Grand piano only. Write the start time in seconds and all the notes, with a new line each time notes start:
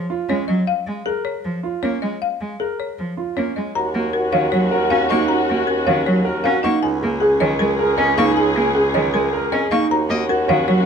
0.10 F4
0.29 C#4
1.06 A#4
1.63 F4
1.83 C#4
2.60 A#4
3.17 F4
3.37 C#4
4.33 C#5
4.71 A#4
4.91 F#4
5.10 D#4
5.86 C#5
6.25 A#4
6.44 F#4
6.63 D#4
7.21 G#4
7.40 C#5
7.79 A#4
7.98 G#4
8.17 D#4
8.75 G#4
8.95 C#5
9.33 A#4
9.52 G#4
9.71 D#4
10.29 F#4
10.48 C#5